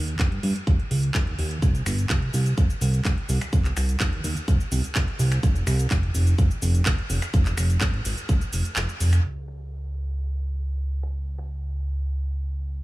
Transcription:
Already playing: analog synth bass D#2
0.08 closed hi-hat
0.19 analog synth bass G2, kick, clap, closed hi-hat
0.32 closed hi-hat
0.43 analog synth bass G2, open hi-hat
0.56 closed hi-hat
0.67 analog synth bass D#2, kick, closed hi-hat
0.80 closed hi-hat
0.91 analog synth bass C#2, open hi-hat
1.03 closed hi-hat
1.15 analog synth bass D#2, kick, clap, closed hi-hat
1.27 closed hi-hat
1.39 analog synth bass D#2, open hi-hat
1.51 closed hi-hat
1.62 analog synth bass C2, kick, closed hi-hat, cabasa
1.75 closed hi-hat, cabasa
1.86 analog synth bass G1, finger snap, open hi-hat, cabasa
1.99 closed hi-hat, cabasa
2.10 analog synth bass C2, kick, clap, closed hi-hat, cabasa
2.22 closed hi-hat
2.34 analog synth bass C2, open hi-hat, cabasa
2.46 closed hi-hat, cabasa
2.58 analog synth bass C2, kick, closed hi-hat, cabasa
2.70 closed hi-hat, cabasa
2.81 analog synth bass C2, open hi-hat, cabasa
2.94 closed hi-hat, cabasa
3.05 analog synth bass C2, kick, clap, closed hi-hat, cabasa
3.18 closed hi-hat
3.29 analog synth bass C2, open hi-hat, cabasa
3.41 finger snap, closed hi-hat, cabasa
3.53 analog synth bass C2, kick, closed hi-hat, cabasa
3.65 clap, closed hi-hat, cabasa
3.77 analog synth bass C2, finger snap, open hi-hat, cabasa
3.89 closed hi-hat, cabasa
4.00 analog synth bass D#2, kick, clap, closed hi-hat, cabasa
4.13 closed hi-hat
4.24 analog synth bass D#2, open hi-hat, cabasa
4.37 closed hi-hat, cabasa
4.48 analog synth bass C2, kick, closed hi-hat, cabasa
4.60 closed hi-hat, cabasa
4.72 analog synth bass C2, open hi-hat, cabasa
4.84 closed hi-hat, cabasa
4.95 analog synth bass C2, kick, clap, closed hi-hat, cabasa
5.08 closed hi-hat
5.19 analog synth bass C2, open hi-hat, cabasa
5.32 finger snap, closed hi-hat, cabasa
5.43 analog synth bass F1, kick, closed hi-hat, cabasa
5.56 closed hi-hat, cabasa
5.67 analog synth bass C2, finger snap, open hi-hat, cabasa
5.79 closed hi-hat, cabasa
5.90 analog synth bass F1, kick, clap, closed hi-hat, cabasa
6.03 closed hi-hat
6.14 analog synth bass F1, open hi-hat, cabasa
6.27 closed hi-hat, cabasa
6.38 analog synth bass F1, kick, closed hi-hat, cabasa
6.51 closed hi-hat, cabasa
6.62 analog synth bass F1, open hi-hat, cabasa
6.75 closed hi-hat, cabasa
6.86 analog synth bass F1, kick, clap, closed hi-hat, cabasa
6.98 closed hi-hat
7.10 analog synth bass F1, open hi-hat, cabasa
7.22 finger snap, closed hi-hat, cabasa
7.34 analog synth bass F1, kick, closed hi-hat, cabasa
7.46 clap, closed hi-hat, cabasa
7.57 analog synth bass F1, finger snap, open hi-hat, cabasa
7.70 closed hi-hat, cabasa
7.81 analog synth bass G#1, kick, clap, closed hi-hat, cabasa
7.94 closed hi-hat
8.05 analog synth bass G#1, open hi-hat, cabasa
8.17 closed hi-hat, cabasa
8.29 analog synth bass F1, kick, closed hi-hat, cabasa
8.41 closed hi-hat, cabasa
8.53 analog synth bass F1, open hi-hat, cabasa
8.65 closed hi-hat, cabasa
8.76 analog synth bass F1, clap, closed hi-hat, cabasa
8.89 closed hi-hat, cabasa
9.00 analog synth bass F1, open hi-hat, cabasa
9.13 finger snap, closed hi-hat, cabasa
9.24 analog synth bass C#2, crash
9.48 finger snap
11.03 finger snap
11.38 finger snap

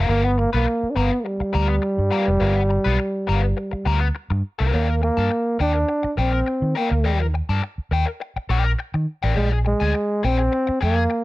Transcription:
0.09 fingered electric bass G1, trombone A#3, overdriven electric guitar B3 F4 A#4
0.24 trombone B3, muted overdriven electric guitar stroke
0.38 trombone A#3, muted overdriven electric guitar stroke
0.53 fingered electric bass B1, trombone A#3, overdriven electric guitar B3 F4 B4
0.67 muted overdriven electric guitar stroke
0.83 muted fingered electric bass stroke
0.91 trombone D4
0.96 fingered electric bass G1, overdriven electric guitar B3 F4 A#4, trombone B3
1.11 muted overdriven electric guitar stroke
1.20 trombone A#3
1.24 trombone G3, muted overdriven electric guitar stroke
1.40 muted overdriven electric guitar stroke, muted fingered electric bass stroke
1.53 fingered electric bass D2, overdriven electric guitar B3 F4 A#4
1.69 muted overdriven electric guitar stroke
1.82 muted overdriven electric guitar stroke
1.98 fingered electric bass G2
2.10 overdriven electric guitar B3 F4 A#4
2.27 fingered electric bass F1, muted overdriven electric guitar stroke
2.40 fingered electric bass G1, overdriven electric guitar B3 F4 A#4
2.56 muted overdriven electric guitar stroke
2.69 muted overdriven electric guitar stroke
2.84 fingered electric bass B1, overdriven electric guitar B3 F4 B4
2.99 muted overdriven electric guitar stroke
3.27 fingered electric bass G1, overdriven electric guitar B3 F4 A#4
3.42 muted overdriven electric guitar stroke
3.57 muted overdriven electric guitar stroke
3.71 muted overdriven electric guitar stroke, muted fingered electric bass stroke
3.85 fingered electric bass D2, overdriven electric guitar B3 F4 A#4
4.01 muted overdriven electric guitar stroke
4.15 muted overdriven electric guitar stroke
4.30 fingered electric bass G2, muted overdriven electric guitar stroke
4.59 fingered electric bass C2, overdriven electric guitar B3 F4 A#4
4.72 fingered electric bass D#2, trombone A#3, overdriven electric guitar A#4 D5 G5
4.88 muted overdriven electric guitar stroke
5.02 trombone A#3, muted overdriven electric guitar stroke
5.17 fingered electric bass G2, overdriven electric guitar A#4 D5 A5
5.30 muted overdriven electric guitar stroke
5.59 fingered electric bass D#2, trombone D4, overdriven electric guitar A#4 D5 G5
5.74 muted overdriven electric guitar stroke
5.88 muted overdriven electric guitar stroke
6.03 muted overdriven electric guitar stroke, muted fingered electric bass stroke
6.17 fingered electric bass A#1, trombone C4, overdriven electric guitar A#4 D5 G5
6.33 muted overdriven electric guitar stroke
6.46 muted overdriven electric guitar stroke
6.62 fingered electric bass D#3
6.75 trombone A#3, overdriven electric guitar A#4 D5 G5
6.91 fingered electric bass D2, muted overdriven electric guitar stroke
7.04 fingered electric bass D#2, overdriven electric guitar A#4 D5 G5
7.20 muted overdriven electric guitar stroke
7.34 muted overdriven electric guitar stroke
7.49 fingered electric bass G2, overdriven electric guitar A#4 D5 A5
7.62 muted overdriven electric guitar stroke
7.78 muted fingered electric bass stroke
7.91 fingered electric bass D#2, overdriven electric guitar A#4 D5 G5
8.06 muted overdriven electric guitar stroke
8.20 muted overdriven electric guitar stroke
8.36 muted fingered electric bass stroke, muted overdriven electric guitar stroke
8.49 fingered electric bass A#1, overdriven electric guitar A#4 D5 G5
8.65 muted overdriven electric guitar stroke
8.79 muted overdriven electric guitar stroke
8.94 fingered electric bass D#3, muted overdriven electric guitar stroke
9.23 fingered electric bass A1, overdriven electric guitar A#4 D5 G5
9.36 fingered electric bass A#1, trombone G#3, overdriven electric guitar G#4 D5 G5
9.51 muted overdriven electric guitar stroke
9.65 trombone G#3, muted overdriven electric guitar stroke
9.80 fingered electric bass D2, overdriven electric guitar G#4 D5 G#5
9.94 muted overdriven electric guitar stroke
10.23 fingered electric bass A#1, trombone C4, overdriven electric guitar G#4 D5 G5
10.38 muted overdriven electric guitar stroke
10.52 muted overdriven electric guitar stroke
10.67 muted overdriven electric guitar stroke, muted fingered electric bass stroke
10.81 fingered electric bass F2, trombone A#3, overdriven electric guitar G#4 D5 G5
10.96 muted overdriven electric guitar stroke
11.10 muted overdriven electric guitar stroke

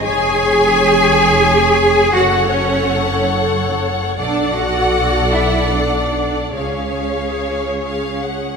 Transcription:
0.03 double bass section F1, viola section G#4 C#5, cello section G#4, violin section G#5
2.14 double bass section F#1, cello section F#4, viola section A4 C#5, violin section F#5
2.49 cello section C#4, violin section C#5
4.19 double bass section B1, cello section D4, viola section A4 D5, violin section D5 F#5
4.55 cello section F#4, violin section F#5
5.32 cello section E4, violin section E5
5.72 cello section D4, violin section D5
6.57 double bass section C#2, cello section C#4, viola section G#4 C#5, violin section C#5 F5
7.84 violin section F5
8.24 violin section F#5

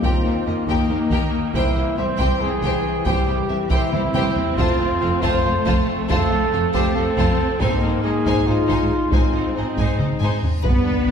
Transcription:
Already playing: french horn section D#3 A#3
0.02 cello section D#2, double bass section D#2, viola section C4, trumpet F4, violin section G4 A#4 G5, taiko
0.24 cello section D#2, double bass section D#2, violin section D#4 G4 A#4
0.44 double bass section D#2, cello section D#2, viola section A#3, violin section G4 D#5
0.67 double bass section D#2, cello section D#2, trumpet D#4, violin section G4 A#4 G5, taiko
0.89 double bass section D#2, cello section D#2, trumpet D#4, violin section D#4 G4 A#4
1.10 double bass section D#2, cello section D#2, violin section G4 A#4 G5, taiko
1.53 double bass section C2, cello section C2, french horn section E3 C4, trumpet E4, violin section G4 C5 G5, taiko
1.75 double bass section C2, cello section C2, violin section E4 G4 C5
1.97 cello section C2, double bass section C2, viola section C4, violin section G4 E5, trumpet C5
2.18 double bass section C2, cello section C2, violin section G4 C5 G5, taiko
2.41 cello section C2, double bass section C2, viola section E3, violin section E4 G4 C5, trumpet G#4
2.62 cello section C2, double bass section C2, violin section G4 C5 G5, taiko
3.05 double bass section C2, cello section C2, viola section G3, trumpet G4, violin section G4 C5 G5, taiko
3.26 cello section C2, double bass section C2, violin section E4 G4 C5
3.48 double bass section C2, cello section C2, viola section E3, violin section G4 E5
3.70 double bass section C2, cello section C2, trumpet E4, violin section G4 C5 G5, taiko
3.92 cello section C2, double bass section C2, viola section C4, trumpet E4, violin section E4 G4 C5, taiko mid
4.14 cello section C2, double bass section C2, violin section G4 C5 G5, taiko high
4.37 taiko low
4.56 double bass section F1, cello section F2, french horn section A3 C4, trumpet F4, violin section F4 C5 A5, taiko
4.79 double bass section F1, cello section F2, violin section F4 C5
5.01 double bass section F1, cello section F2, violin section F4 A4 F5
5.22 double bass section F1, cello section F2, violin section F4 C5 A5, trumpet C5, taiko
5.44 double bass section F1, cello section F2, viola section A3, violin section F4 C5
5.66 double bass section F1, cello section F2, violin section F4 C5 A5, taiko
6.09 double bass section F1, cello section F2, violin section F4 C5 A5, trumpet A4, taiko
6.30 double bass section F1, cello section F2, violin section F4 C5
6.52 double bass section F1, cello section F2, violin section F4 A4 F5
6.73 double bass section F1, cello section F2, violin section F4 C5 A5, trumpet G4, taiko
6.95 double bass section F1, cello section F2, viola section C4, violin section F4 C5, trumpet A4
7.16 double bass section F1, cello section F2, violin section F4 C5 A5, taiko
7.59 double bass section G#1, cello section G#2, french horn section G#3 D#4, viola section A#3, trumpet C4, violin section D#4 C5 G#5, taiko
7.82 double bass section G#1, cello section G#2, violin section D#4 C5
8.04 double bass section G#1, cello section G#2, violin section D#4 G#4 D#5, trumpet G#4
8.25 double bass section G#1, cello section G#2, violin section D#4 C5 G#5, taiko
8.47 double bass section G#1, cello section G#2, viola section G#3, violin section D#4 C5, trumpet F4
8.66 double bass section G#1, cello section G#2, violin section D#4 C5 G#5, taiko
9.11 double bass section G#1, cello section G#2, viola section C4, violin section D#4 C5 G#5, trumpet F4, taiko, reverse cymbal
9.34 double bass section G#1, cello section G#2, violin section D#4 C5
9.55 double bass section G#1, cello section G#2, trumpet D#4, violin section D#4 G#4 D#5
9.77 double bass section G#1, cello section G#2, violin section D#4 G#5, taiko
9.81 violin section C5
9.99 double bass section G#1, cello section G#2, violin section D#4 C5, taiko mid
10.20 double bass section G#1, cello section G#2, violin section D#4 C5 G#5, taiko low-mid
10.43 taiko low
10.63 double bass section G1, trombone section G2 G3, french horn section B3 B4, cello section B3, violin section B4, taiko, sub drop
10.85 double bass section G1, violin section D4
11.07 double bass section G1, violin section G4, viola section D5

